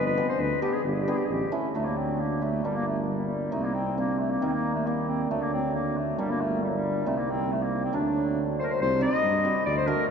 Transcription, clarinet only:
0.06 0.27 B4 medium
0.29 0.42 C5 medium
0.40 0.61 B4 medium
0.62 0.75 G4 medium
0.73 0.84 G#4 medium
0.84 0.95 G4 medium
0.94 1.03 G#4 medium
1.02 1.11 G4 medium
1.10 1.18 G#4 medium
1.17 1.27 G4 medium
1.25 1.34 G#4 medium
1.32 1.51 G4 medium
1.74 1.87 A3 medium
1.85 1.98 A#3 medium
1.97 2.21 C4 medium
2.20 2.44 A#3 medium
2.43 2.66 A3 medium
2.65 2.77 G3 medium
2.76 2.86 A#3 medium
2.87 3.03 A3 medium
3.03 3.10 A3 soft
3.09 3.54 G3 medium
3.53 3.66 A3 medium
3.64 3.76 A#3 medium
3.74 3.97 C4 medium
3.98 4.20 A#3 medium
4.19 4.32 A3 medium
4.31 4.43 A#3 medium
4.41 4.49 A#3 medium
4.41 4.46 C4 medium
4.47 4.52 C4 medium
4.52 4.73 A#3 medium
4.75 4.88 A3 medium
4.87 5.08 A#3 medium
5.08 5.29 C4 medium
5.30 5.44 A3 medium
5.42 5.52 A#3 medium
5.53 5.73 C4 medium
5.75 5.99 A#3 medium
5.97 6.18 A3 medium
6.19 6.29 G3 medium
6.30 6.42 A#3 medium
6.41 6.63 A3 medium
6.63 6.71 G3 medium
6.69 6.78 F#3 medium
6.77 7.08 G3 medium
7.07 7.20 A3 medium
7.18 7.32 A#3 medium
7.30 7.54 C4 medium
7.52 7.64 A3 medium
7.63 7.84 A#3 medium
7.85 7.96 C4 medium
7.95 8.43 D4 medium
8.60 8.72 A#4 medium
8.60 8.65 C5 medium
8.70 8.80 C5 medium
8.82 9.01 C5 loud
9.02 9.62 D#5 loud
9.66 9.76 D5 medium
9.77 9.89 C5 medium
9.87 10.08 A#4 medium

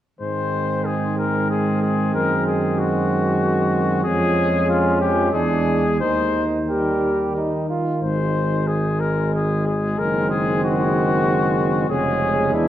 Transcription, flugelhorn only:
0.21 4.01 C4 soft
4.06 5.31 C#4 soft
5.34 5.84 D4 soft
6.01 6.61 D#4 soft
6.69 7.32 G4 soft
7.36 7.69 D#4 soft
7.70 8.02 F4 soft
10.00 11.86 C4 soft
11.90 12.55 C#4 soft
12.54 12.68 D4 soft

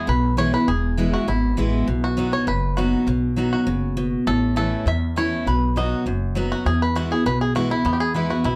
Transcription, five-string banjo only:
0.09 0.38 B4 medium
0.38 0.53 C#5 loud
0.54 0.69 B4 loud
0.68 1.10 G#4 medium
1.14 1.27 F#4 medium
1.28 1.56 E4 medium
2.04 2.31 F#4 medium
2.33 2.47 C#5 loud
2.48 2.79 B4 medium
2.77 3.05 F#4 medium
3.53 4.23 F#4 medium
4.27 4.56 A4 loud
4.57 4.88 A4 loud
4.88 5.17 E5 loud
5.18 5.45 C#5 loud
5.48 5.78 B4 medium
5.77 6.05 D#5 medium
6.52 6.65 F#4 medium
6.66 6.80 G#4 loud
6.82 6.96 B4 loud
6.96 7.12 F#4 loud
7.12 7.26 G#4 medium
7.26 7.40 B4 loud
7.41 7.55 G#4 medium
7.56 7.70 F#4 loud
7.71 7.93 E4 loud
7.86 8.56 B3 medium
7.93 8.00 G4 medium
8.00 8.15 G#4 loud
8.16 8.45 E4 medium
8.30 8.45 F#4 medium
8.45 8.56 E4 medium

